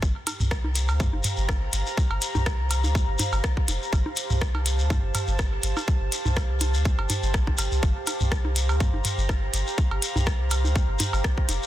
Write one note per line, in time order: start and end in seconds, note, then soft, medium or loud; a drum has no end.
0.02 0.12 G1 loud
0.02 11.66 G4 medium
0.02 kick loud
0.02 shekere soft
0.27 closed hi-hat medium
0.27 cowbell medium
0.27 low bongo soft
0.27 shekere loud
0.32 11.66 C5 medium
0.32 4.25 A#5 medium
0.40 0.90 C2 medium
0.40 mid tom medium
0.40 shekere medium
0.51 11.66 F5 medium
0.51 kick loud
0.51 cross-stick loud
0.51 shekere soft
0.64 low bongo medium
0.75 closed hi-hat medium
0.75 shekere loud
0.88 1.06 D2 loud
0.88 cowbell medium
0.88 shekere soft
1.00 kick loud
1.00 mid tom medium
1.00 shekere soft
1.13 1.21 G1 medium
1.13 low bongo soft
1.24 closed hi-hat medium
1.24 mid tom medium
1.24 shekere loud
1.37 1.68 G1 loud
1.37 shekere soft
1.49 kick loud
1.49 cross-stick loud
1.49 cowbell medium
1.49 low bongo medium
1.49 shekere soft
1.73 1.83 G1 loud
1.73 closed hi-hat medium
1.73 shekere medium
1.86 shekere medium
1.97 kick loud
1.97 low bongo soft
1.97 shekere soft
2.11 2.19 G1 loud
2.11 cowbell medium
2.22 closed hi-hat medium
2.22 shekere medium
2.35 2.85 C2 medium
2.35 mid tom medium
2.35 low bongo medium
2.35 shekere medium
2.46 kick loud
2.46 cross-stick loud
2.46 shekere soft
2.71 closed hi-hat loud
2.71 cowbell medium
2.71 shekere loud
2.84 3.01 D2 loud
2.84 low bongo soft
2.84 shekere medium
2.95 kick loud
2.95 shekere soft
3.08 3.16 G1 medium
3.19 closed hi-hat loud
3.19 mid tom medium
3.19 low bongo medium
3.19 shekere medium
3.32 3.41 G1 medium
3.32 cowbell medium
3.32 shekere medium
3.44 kick loud
3.44 cross-stick loud
3.44 shekere soft
3.57 kick medium
3.68 3.78 F1 loud
3.68 closed hi-hat medium
3.68 low bongo soft
3.68 shekere medium
3.82 shekere medium
3.93 4.02 G1 loud
3.93 kick loud
3.93 cowbell medium
3.93 shekere soft
4.06 low bongo medium
4.16 closed hi-hat loud
4.16 shekere loud
4.22 8.15 A5 medium
4.30 4.81 C2 medium
4.30 mid tom medium
4.30 shekere medium
4.41 kick loud
4.41 cross-stick loud
4.41 shekere soft
4.55 cowbell medium
4.55 low bongo soft
4.66 closed hi-hat loud
4.66 shekere loud
4.79 4.96 D2 loud
4.79 shekere medium
4.90 kick loud
4.90 mid tom medium
4.90 low bongo medium
4.90 shekere soft
5.03 5.11 G1 medium
5.15 closed hi-hat loud
5.15 mid tom medium
5.15 cowbell medium
5.15 shekere medium
5.27 5.58 G1 loud
5.27 shekere soft
5.39 kick loud
5.39 cross-stick loud
5.39 low bongo soft
5.39 shekere soft
5.63 5.73 G1 loud
5.63 closed hi-hat loud
5.63 shekere loud
5.77 cowbell medium
5.77 low bongo medium
5.77 shekere medium
5.88 kick loud
5.88 shekere soft
6.01 6.09 G1 loud
6.12 closed hi-hat loud
6.12 shekere loud
6.25 6.76 C2 medium
6.25 mid tom medium
6.25 low bongo soft
6.25 shekere medium
6.36 kick loud
6.36 cross-stick medium
6.36 cowbell medium
6.36 shekere soft
6.60 closed hi-hat loud
6.60 low bongo medium
6.60 shekere loud
6.74 6.91 D2 loud
6.74 shekere medium
6.85 kick loud
6.85 shekere soft
6.99 7.07 G1 medium
6.99 cowbell medium
7.10 closed hi-hat loud
7.10 mid tom medium
7.10 low bongo soft
7.10 shekere medium
7.23 7.36 G1 medium
7.23 shekere medium
7.34 7.52 A#1 medium
7.34 kick loud
7.34 cross-stick medium
7.34 shekere soft
7.47 kick medium
7.47 low bongo medium
7.58 7.68 G1 medium
7.58 closed hi-hat loud
7.58 cowbell medium
7.58 shekere medium
7.72 7.80 C2 loud
7.72 shekere medium
7.83 7.92 G1 loud
7.83 kick loud
7.83 shekere soft
8.07 closed hi-hat medium
8.07 cowbell medium
8.07 low bongo soft
8.07 shekere loud
8.12 11.66 A#5 medium
8.20 8.71 C2 medium
8.20 mid tom medium
8.20 shekere medium
8.32 kick loud
8.32 cross-stick medium
8.32 shekere soft
8.45 low bongo medium
8.56 closed hi-hat medium
8.56 shekere medium
8.69 8.86 D2 loud
8.69 cowbell medium
8.69 shekere soft
8.80 kick loud
8.80 mid tom medium
8.80 shekere soft
8.94 9.02 G1 medium
8.94 low bongo soft
9.05 closed hi-hat medium
9.05 mid tom medium
9.05 shekere loud
9.18 9.49 G1 loud
9.18 shekere medium
9.29 kick loud
9.29 cross-stick medium
9.29 cowbell medium
9.29 low bongo medium
9.29 shekere soft
9.54 9.63 G1 loud
9.54 closed hi-hat medium
9.54 shekere medium
9.67 shekere medium
9.78 kick loud
9.78 low bongo soft
9.78 shekere soft
9.91 9.99 G1 loud
9.91 cowbell medium
10.02 closed hi-hat medium
10.02 shekere medium
10.16 10.66 C2 medium
10.16 mid tom medium
10.16 low bongo medium
10.16 shekere medium
10.27 kick loud
10.27 cross-stick medium
10.27 shekere soft
10.51 closed hi-hat medium
10.51 cowbell medium
10.51 shekere medium
10.64 10.81 D2 loud
10.64 low bongo soft
10.64 shekere soft
10.76 kick loud
10.76 shekere soft
10.89 10.97 G1 medium
10.99 closed hi-hat medium
10.99 mid tom medium
10.99 low bongo medium
10.99 shekere medium
11.13 11.21 G1 medium
11.13 cowbell medium
11.13 shekere soft
11.24 kick loud
11.24 cross-stick medium
11.24 shekere soft
11.38 kick medium
11.49 11.58 F1 loud
11.49 closed hi-hat medium
11.49 low bongo soft
11.49 shekere medium
11.63 shekere medium